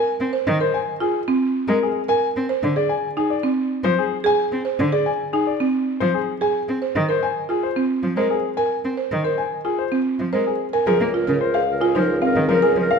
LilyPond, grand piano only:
\new Staff \with { instrumentName = "Grand piano" } { \time 4/4 \key bes \mixolydian \tempo 4 = 111 r4 c''16 aes''16 r16 aes'16 r4 bes'16 aes'16 r16 aes''16 | r4 d''16 aes''16 r16 aes'16 d''16 r8. c''16 aes'16 r16 aes''16 | r4 d''16 aes''16 r16 aes'16 d''16 r8. c''16 aes'16 r16 aes''16 | r4 c''16 aes''16 r16 aes'16 c''16 r8. bes'16 aes'16 r16 aes''16 |
r4 c''16 aes''16 r16 aes'16 c''16 r8. bes'16 aes'16 r16 aes''16 | \key des \lydian bes'16 r8. c''16 f''16 r16 aes'16 c''16 r16 f''16 r16 bes'16 aes'16 r16 f''16 | }